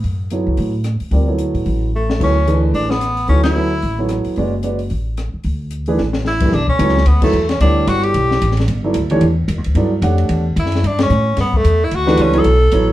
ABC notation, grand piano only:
X:1
M:4/4
L:1/8
Q:"Swing" 1/4=222
K:Dlyd
V:1 name="Grand piano"
z2 [F,B,EAc]3 z3 | [=G,=C=F_Bd] [^F,=B,EA^c]4 z3 | [F,B,EAc] z [E,A,DGB]3 z3 | [F,B,EAc]2 [F,B,EAc] z2 [F,B,EAc]3 |
[G,CFBd] z [G,CFBd] z4 z | z3 [E,A,DGB] z3 [F,,E,A,D=GB] | [K:Glyd] z2 [F,B,EAc] z2 [F,B,EAc] z2 | [G,B,EAc]4- [G,B,EAc] z3 |
z [F,B,EAd] z [E,A,DGc] z4 | [F,B,EAd] z [A,DGcf]3 z3 | z8 | z [E,A,DGB]2 [F,B,EAc] z2 [F,B,EAc]2 |]